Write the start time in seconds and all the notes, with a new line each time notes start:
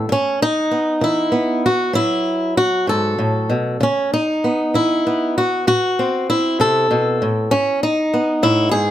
Already playing: E3 A4
0.09 G#2 C#4
0.42 D#4
0.71 B3
1.01 E3 E4
1.32 B3
1.66 F#4
1.93 A2 F#3 E4
2.57 F#4
2.87 G#2 A4
3.19 A2
3.50 B2
3.81 C#3 C#4
4.13 D#4
4.44 B3
4.74 E3 E4
5.07 B3
5.38 F#4
5.67 A2 F#4
5.99 C4
6.30 E4
6.60 C3 A4
6.91 B2
7.22 A2
7.51 G#2 C#4
7.83 D#4
8.14 B3
8.43 A2 E4
8.71 G#2 G#4